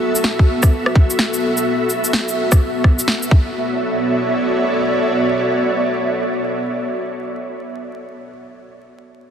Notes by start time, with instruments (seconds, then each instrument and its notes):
Already playing: ambient pad B3 F#4 A4 E5
0.15 shaker
0.24 snare
0.39 kick
0.63 kick, cross-stick, shaker
0.86 cross-stick
0.95 kick
1.10 shaker
1.19 snare
1.34 shaker
1.57 shaker
1.90 shaker
2.04 shaker
2.13 snare
2.28 shaker
2.52 kick, cross-stick, shaker
2.84 kick, cross-stick
2.99 shaker
3.08 snare
3.23 shaker
3.31 ambient pad B3 F#4 A4 C#5 D5 E5, kick